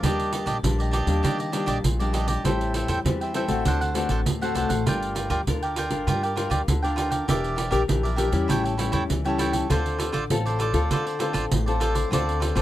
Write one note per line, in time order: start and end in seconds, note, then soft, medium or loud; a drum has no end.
0.02 0.41 D#2 medium
0.02 0.60 D#3 medium
0.02 0.59 G3 medium
0.02 0.59 A#3 medium
0.02 0.31 D4 medium
0.02 0.59 D4 medium
0.02 0.32 G4 medium
0.02 0.33 D5 medium
0.02 0.33 D#5 medium
0.02 pandeiro medium
0.20 pandeiro soft
0.32 0.45 D4 soft
0.32 0.45 G4 medium
0.32 0.46 D5 soft
0.32 0.46 D#5 soft
0.32 pandeiro medium
0.46 0.60 A#1 medium
0.46 0.56 D4 medium
0.46 0.57 G4 medium
0.46 0.57 D5 medium
0.46 0.57 D#5 medium
0.46 pandeiro soft
0.63 1.02 A#1 medium
0.63 1.21 A#2 soft
0.63 1.04 G3 soft
0.63 1.04 A#3 soft
0.63 1.04 D4 soft
0.63 pandeiro medium
0.79 0.91 G4 soft
0.79 0.92 D5 soft
0.79 0.92 D#5 soft
0.79 pandeiro soft
0.91 1.21 D4 medium
0.91 1.22 G4 medium
0.91 1.23 D5 medium
0.91 1.23 D#5 medium
0.91 pandeiro medium
1.07 1.20 D#2 medium
1.07 1.48 G3 medium
1.07 1.48 A#3 medium
1.07 1.49 D4 medium
1.07 pandeiro soft
1.23 1.62 D#3 medium
1.23 1.81 D#3 soft
1.23 1.37 D4 medium
1.23 1.38 G4 medium
1.23 1.37 D5 medium
1.23 1.38 D#5 medium
1.23 pandeiro medium
1.38 1.52 G4 soft
1.38 1.53 D5 soft
1.38 1.53 D#5 soft
1.38 pandeiro soft
1.52 1.82 G3 soft
1.52 1.82 A#3 soft
1.52 1.65 D4 soft
1.52 1.82 D4 medium
1.52 1.66 G4 medium
1.52 1.67 D5 soft
1.52 1.66 D#5 soft
1.52 pandeiro medium
1.66 1.81 A#1 medium
1.66 1.77 D4 medium
1.66 1.77 G4 medium
1.66 1.77 D5 medium
1.66 1.77 D#5 medium
1.66 pandeiro medium
1.84 2.36 A#1 medium
1.84 2.42 A#2 medium
1.84 pandeiro medium
1.99 2.40 G3 medium
1.99 2.40 A#3 medium
1.99 2.41 D4 medium
1.99 2.12 G4 soft
1.99 2.13 D5 soft
1.99 2.13 D#5 soft
1.99 pandeiro soft
2.13 2.28 D4 medium
2.13 2.28 G4 medium
2.13 2.26 D5 medium
2.13 2.27 D#5 medium
2.13 pandeiro medium
2.27 2.43 G4 soft
2.27 2.42 D5 soft
2.27 2.43 D#5 soft
2.27 pandeiro medium
2.44 2.83 A1 medium
2.44 3.02 A2 medium
2.44 3.00 G3 soft
2.44 3.00 C4 soft
2.44 3.00 E4 medium
2.44 2.73 A4 medium
2.44 2.74 C5 medium
2.44 2.74 E5 medium
2.44 2.75 G5 medium
2.44 pandeiro medium
2.61 pandeiro soft
2.74 2.87 A4 soft
2.74 2.87 C5 medium
2.74 2.88 E5 soft
2.74 2.88 G5 medium
2.74 pandeiro medium
2.88 3.02 E2 medium
2.88 2.98 A4 medium
2.88 2.98 C5 medium
2.88 2.99 E5 medium
2.88 2.99 G5 medium
2.88 pandeiro soft
3.05 3.43 E2 medium
3.05 3.63 E3 soft
3.05 3.31 G3 soft
3.05 3.31 C4 soft
3.05 3.31 E4 soft
3.05 pandeiro medium
3.21 3.34 C5 soft
3.21 3.34 E5 soft
3.21 3.35 G5 soft
3.21 pandeiro soft
3.34 3.45 G3 soft
3.34 3.45 C4 medium
3.34 3.46 E4 soft
3.34 3.64 A4 medium
3.34 3.64 C5 medium
3.34 3.64 E5 medium
3.34 3.65 G5 medium
3.34 pandeiro medium
3.48 3.62 A1 medium
3.48 3.90 A3 medium
3.48 3.90 C4 medium
3.48 3.90 F#4 medium
3.48 pandeiro soft
3.65 4.04 D2 medium
3.65 4.23 D3 medium
3.65 3.79 D4 medium
3.65 3.80 A4 medium
3.65 3.80 C5 medium
3.65 3.80 F#5 medium
3.65 pandeiro medium
3.81 3.95 A4 soft
3.81 3.95 C5 soft
3.81 3.95 F#5 soft
3.81 pandeiro soft
3.94 4.23 A3 medium
3.94 4.24 C4 soft
3.94 4.09 D4 soft
3.94 4.24 F#4 medium
3.94 4.09 A4 medium
3.94 4.10 C5 medium
3.94 4.10 F#5 soft
3.94 pandeiro medium
4.09 4.23 A1 medium
4.09 4.20 D4 medium
4.09 4.20 A4 medium
4.09 4.20 C5 medium
4.09 4.20 F#5 medium
4.09 pandeiro medium
4.26 4.52 D2 medium
4.26 4.83 A2 medium
4.26 pandeiro medium
4.41 4.82 A3 medium
4.41 4.82 C4 soft
4.41 4.82 F#4 medium
4.41 4.54 A4 soft
4.41 4.55 C5 soft
4.41 4.55 F#5 soft
4.41 pandeiro soft
4.55 4.69 C2 medium
4.55 4.69 D4 medium
4.55 4.70 A4 medium
4.55 4.69 C5 medium
4.55 4.68 F#5 medium
4.55 pandeiro medium
4.69 4.84 A1 medium
4.69 4.85 A4 soft
4.69 4.85 C5 soft
4.69 4.84 F#5 soft
4.69 pandeiro medium
4.86 5.25 G1 loud
4.86 5.44 G3 medium
4.86 5.42 D4 soft
4.86 5.14 F4 medium
4.86 5.42 F4 medium
4.86 5.42 A#4 medium
4.86 5.15 A#4 medium
4.86 5.15 D5 medium
4.86 5.16 G5 medium
4.86 pandeiro medium
5.03 pandeiro soft
5.15 5.29 F4 medium
5.15 5.29 A#4 soft
5.15 5.29 D5 medium
5.15 5.30 G5 soft
5.15 pandeiro medium
5.30 5.44 D2 medium
5.30 5.40 F4 medium
5.30 5.40 A#4 medium
5.30 5.40 D5 medium
5.30 5.41 G5 medium
5.30 pandeiro soft
5.47 5.86 D2 medium
5.47 6.05 D3 soft
5.47 5.75 D4 soft
5.47 5.76 F4 soft
5.47 5.76 A#4 medium
5.47 pandeiro medium
5.62 5.76 A#4 soft
5.62 5.77 D5 soft
5.62 5.76 G5 soft
5.62 pandeiro soft
5.76 6.06 F4 medium
5.76 6.06 A#4 medium
5.76 6.07 D5 medium
5.76 6.07 G5 medium
5.76 pandeiro medium
5.90 6.04 G1 medium
5.90 6.32 D4 medium
5.90 6.32 F4 medium
5.90 6.32 A#4 medium
5.90 pandeiro medium
6.07 6.46 G2 medium
6.07 6.65 G3 medium
6.07 6.21 F4 medium
6.07 6.22 A#4 medium
6.07 6.22 D5 medium
6.07 6.22 G5 medium
6.07 pandeiro medium
6.23 6.35 A#4 soft
6.23 6.36 D5 soft
6.23 6.37 G5 soft
6.23 pandeiro soft
6.36 6.65 D4 soft
6.36 6.49 F4 soft
6.36 6.66 F4 soft
6.36 6.49 A#4 soft
6.36 6.66 A#4 soft
6.36 6.50 D5 soft
6.36 6.50 G5 soft
6.36 pandeiro medium
6.50 6.64 D2 medium
6.50 6.60 F4 medium
6.50 6.61 A#4 medium
6.50 6.61 D5 medium
6.50 6.61 G5 medium
6.50 pandeiro medium
6.68 7.19 D2 medium
6.68 7.25 D3 soft
6.68 pandeiro medium
6.83 7.24 D4 soft
6.83 7.24 F4 soft
6.83 7.24 A#4 medium
6.83 6.96 A#4 soft
6.83 6.97 D5 soft
6.83 6.97 G5 soft
6.83 pandeiro soft
6.96 7.11 F4 medium
6.96 7.11 A#4 medium
6.96 7.10 D5 medium
6.96 7.09 G5 medium
6.96 pandeiro medium
7.11 7.27 A#4 soft
7.11 7.26 D5 soft
7.11 7.26 G5 soft
7.11 pandeiro medium
7.28 7.67 E1 medium
7.28 7.86 E3 medium
7.28 7.57 D4 soft
7.28 7.55 G4 medium
7.28 7.57 G4 medium
7.28 7.56 A#4 medium
7.28 7.57 A#4 medium
7.28 7.58 D5 medium
7.28 7.57 E5 medium
7.28 pandeiro medium
7.44 pandeiro soft
7.56 7.69 G4 soft
7.56 7.70 A#4 soft
7.56 7.71 D5 medium
7.56 7.70 E5 soft
7.56 pandeiro medium
7.71 7.85 A#1 medium
7.71 7.83 D4 medium
7.71 7.81 G4 medium
7.71 7.83 G4 medium
7.71 7.81 A#4 medium
7.71 7.83 A#4 medium
7.71 7.82 D5 medium
7.71 7.82 E5 medium
7.71 pandeiro soft
7.88 8.27 A#1 medium
7.88 8.46 E3 soft
7.88 8.06 D4 soft
7.88 8.06 G4 soft
7.88 8.07 A#4 soft
7.88 pandeiro medium
8.03 8.16 A#4 soft
8.03 8.17 D5 soft
8.03 8.17 E5 soft
8.03 pandeiro soft
8.16 8.29 D4 medium
8.16 8.47 G4 medium
8.16 8.29 G4 medium
8.16 8.47 A#4 medium
8.16 8.29 A#4 soft
8.16 8.48 D5 medium
8.16 8.47 E5 medium
8.16 pandeiro medium
8.32 8.46 E2 medium
8.32 8.74 G3 medium
8.32 8.74 C#4 medium
8.32 8.74 E4 medium
8.32 pandeiro soft
8.48 8.88 A1 medium
8.48 9.07 A2 soft
8.48 8.62 E4 medium
8.48 8.63 A4 medium
8.48 8.63 C#5 medium
8.48 8.63 G5 medium
8.48 pandeiro medium
8.64 8.78 C#5 soft
8.64 8.78 G5 soft
8.64 pandeiro soft
8.78 9.19 G3 medium
8.78 9.20 C#4 soft
8.78 8.91 E4 medium
8.78 9.20 E4 soft
8.78 8.91 A4 soft
8.78 8.92 C#5 medium
8.78 8.92 G5 medium
8.78 pandeiro medium
8.92 9.06 E2 medium
8.92 9.02 E4 medium
8.92 9.03 A4 medium
8.92 9.03 C#5 medium
8.92 9.03 G5 medium
8.92 pandeiro medium
9.09 9.61 C#2 medium
9.09 9.67 E3 soft
9.09 pandeiro medium
9.25 9.65 G3 medium
9.25 9.65 C#4 medium
9.25 9.66 E4 medium
9.25 9.38 A4 soft
9.25 9.39 C#5 soft
9.25 9.39 G5 soft
9.25 pandeiro soft
9.38 9.53 E4 medium
9.38 9.53 A4 medium
9.38 9.53 C#5 medium
9.38 9.51 G5 medium
9.38 pandeiro medium
9.53 9.69 A4 soft
9.53 9.68 C#5 soft
9.53 9.68 G5 soft
9.53 pandeiro medium
9.69 10.09 D2 medium
9.69 10.27 D3 medium
9.69 10.09 C4 medium
9.69 9.97 F4 medium
9.69 10.09 F4 medium
9.69 10.09 A4 medium
9.69 9.98 A4 medium
9.69 9.99 C5 medium
9.69 10.00 D5 medium
9.69 pandeiro medium
9.86 pandeiro soft
9.98 10.11 F4 medium
9.98 10.12 A4 soft
9.98 10.12 C5 soft
9.98 10.13 D5 medium
9.98 pandeiro medium
10.12 10.27 A1 medium
10.12 10.23 F4 medium
10.12 10.23 A4 medium
10.12 10.23 C5 medium
10.12 10.24 D5 medium
10.12 pandeiro soft
10.30 10.69 A1 medium
10.30 10.88 A2 soft
10.30 10.59 C4 soft
10.30 10.59 F4 medium
10.30 10.59 A4 medium
10.30 pandeiro medium
10.46 10.59 A4 soft
10.46 10.59 C5 soft
10.46 10.60 D5 medium
10.46 pandeiro soft
10.59 10.89 F4 medium
10.59 10.89 A4 medium
10.59 10.90 C5 medium
10.59 10.90 D5 medium
10.59 pandeiro medium
10.73 10.87 D2 medium
10.73 11.15 C4 medium
10.73 11.15 F4 medium
10.73 11.16 A4 medium
10.73 pandeiro medium
10.91 11.30 D3 medium
10.91 11.49 D3 medium
10.91 11.05 F4 medium
10.91 11.05 A4 medium
10.91 11.06 C5 medium
10.91 11.05 D5 medium
10.91 pandeiro medium
11.07 11.19 A4 soft
11.07 11.19 C5 soft
11.07 pandeiro soft
11.19 11.61 C4 soft
11.19 11.32 F4 medium
11.19 11.62 F4 medium
11.19 11.33 A4 medium
11.19 11.62 A4 medium
11.19 11.33 C5 medium
11.19 11.33 D5 medium
11.19 pandeiro medium
11.33 11.48 A1 medium
11.33 11.44 F4 medium
11.33 11.44 A4 medium
11.33 11.45 C5 medium
11.33 11.45 D5 medium
11.33 pandeiro medium
11.51 12.03 A1 medium
11.51 12.09 A2 medium
11.51 pandeiro medium
11.66 12.08 C4 soft
11.66 12.08 F4 medium
11.66 12.08 A4 medium
11.66 11.79 A4 soft
11.66 11.80 C5 soft
11.66 11.80 D5 soft
11.66 pandeiro soft
11.80 11.95 F4 medium
11.80 11.95 A4 medium
11.80 11.95 C5 medium
11.80 11.93 D5 medium
11.80 pandeiro medium
11.95 12.11 A4 soft
11.95 12.10 C5 soft
11.95 12.10 D5 soft
11.95 pandeiro medium
12.11 12.51 D2 loud
12.11 12.62 D3 soft
12.11 12.53 C4 medium
12.11 12.39 F4 medium
12.11 12.53 F4 medium
12.11 12.40 A4 medium
12.11 12.53 A4 medium
12.11 12.40 C5 medium
12.11 12.41 D5 medium
12.11 pandeiro medium
12.29 pandeiro soft
12.40 12.54 F4 soft
12.40 12.55 A4 soft
12.40 12.55 C5 medium
12.40 12.56 D5 medium
12.40 pandeiro medium
12.55 12.62 A1 medium
12.55 12.62 C4 medium
12.55 12.62 F4 medium
12.55 12.62 A4 medium
12.55 12.62 C5 medium
12.55 12.62 D5 medium
12.55 pandeiro soft